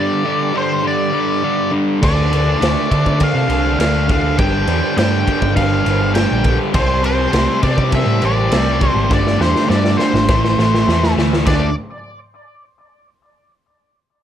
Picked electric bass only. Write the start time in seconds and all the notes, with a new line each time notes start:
2.02 D2
2.62 D2
2.92 D3
3.06 D3
3.35 C3
3.49 C2
3.78 D2
4.23 D2
4.39 G1
4.67 E2
4.97 G2
5.42 G1
5.86 G1
6.32 A#1
6.74 C2
7.33 C2
7.63 C3
7.78 C3
8.06 A2
8.22 A1
8.51 C2
8.95 G#1
9.11 G1
9.40 E2
9.70 G2
10.14 G#1
10.28 A1
10.58 A1
10.88 E2
11.17 D2
11.46 D2